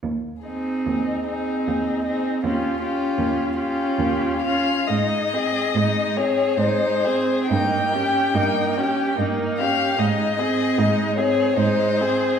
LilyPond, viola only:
\new Staff \with { instrumentName = "Viola" } { \time 3/4 \key aes \major \tempo 4 = 73 r8 c'4 c'4 c'8 | des'8 des'4 des'4 des'8 | aes8 c'8 aes8 c'8 aes8 c'8 | bes8 des'8 bes8 des'8 bes8 des'8 |
aes8 c'8 aes8 c'8 aes8 c'8 | }